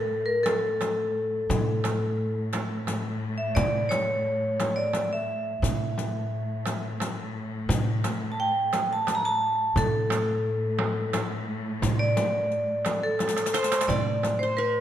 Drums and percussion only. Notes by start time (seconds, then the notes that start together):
0.46 riq, darbuka tek, frame drum
0.81 riq, darbuka tek, frame drum
1.50 riq, frame drum, darbuka dum
1.84 riq, darbuka tek, frame drum
2.53 riq, darbuka tek, frame drum
2.87 riq, darbuka tek, frame drum
3.56 riq, darbuka dum, frame drum
3.91 riq, darbuka tek, frame drum
4.25 darbuka ka
4.60 riq, darbuka tek, frame drum
4.93 riq, darbuka tek, frame drum
5.63 riq, frame drum, darbuka dum
5.98 riq, frame drum
6.66 riq, darbuka tek, frame drum
7.00 riq, darbuka tek, frame drum
7.69 riq, frame drum, darbuka dum
8.04 riq, darbuka tek, frame drum
8.73 riq, darbuka tek, frame drum
9.07 riq, darbuka tek, frame drum
9.76 riq, frame drum, darbuka dum
10.10 riq, darbuka tek, frame drum
10.79 darbuka tek, frame drum
11.13 riq, darbuka tek, frame drum
11.82 riq, frame drum, darbuka dum
12.17 riq, frame drum
12.51 riq, darbuka ka
12.85 riq, darbuka tek, frame drum
13.19 riq, darbuka tek, frame drum
13.28 riq, darbuka ka
13.37 riq, darbuka tek
13.46 riq, darbuka ka
13.54 riq, darbuka tek
13.63 riq, darbuka ka
13.72 riq, darbuka tek
13.81 riq, darbuka ka
13.89 riq, frame drum, darbuka dum
14.23 riq, darbuka tek, frame drum